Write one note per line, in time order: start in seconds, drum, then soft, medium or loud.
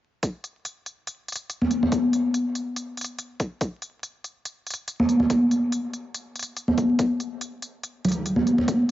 0.23 kick loud
0.23 closed hi-hat medium
0.44 closed hi-hat medium
0.65 closed hi-hat medium
0.86 closed hi-hat soft
1.07 closed hi-hat medium
1.28 closed hi-hat soft
1.32 closed hi-hat medium
1.36 closed hi-hat medium
1.50 closed hi-hat medium
1.62 high conga medium
1.71 closed hi-hat soft
1.83 high conga medium
1.92 kick loud
1.92 closed hi-hat medium
2.13 closed hi-hat medium
2.34 closed hi-hat medium
2.55 closed hi-hat soft
2.76 closed hi-hat medium
2.97 closed hi-hat soft
3.01 closed hi-hat medium
3.04 closed hi-hat medium
3.19 closed hi-hat medium
3.40 kick loud
3.40 closed hi-hat soft
3.61 kick loud
3.61 closed hi-hat medium
3.82 closed hi-hat soft
4.03 closed hi-hat medium
4.24 closed hi-hat soft
4.45 closed hi-hat medium
4.67 closed hi-hat soft
4.70 closed hi-hat medium
4.74 closed hi-hat medium
4.88 closed hi-hat medium
5.00 high conga medium
5.09 closed hi-hat soft
5.20 high conga medium
5.30 kick loud
5.30 closed hi-hat medium
5.51 closed hi-hat soft
5.72 closed hi-hat medium
5.93 closed hi-hat soft
6.14 closed hi-hat medium
6.36 closed hi-hat soft
6.39 closed hi-hat medium
6.43 closed hi-hat medium
6.57 closed hi-hat medium
6.68 high conga medium
6.78 kick loud
6.78 closed hi-hat soft
6.99 kick loud
6.99 closed hi-hat medium
7.20 closed hi-hat soft
7.41 closed hi-hat medium
7.62 closed hi-hat soft
7.83 closed hi-hat medium
8.05 closed hi-hat soft
8.05 low conga medium
8.09 closed hi-hat medium
8.12 closed hi-hat medium
8.26 closed hi-hat medium
8.36 high conga medium
8.47 closed hi-hat soft
8.58 high conga medium
8.68 kick loud
8.68 closed hi-hat medium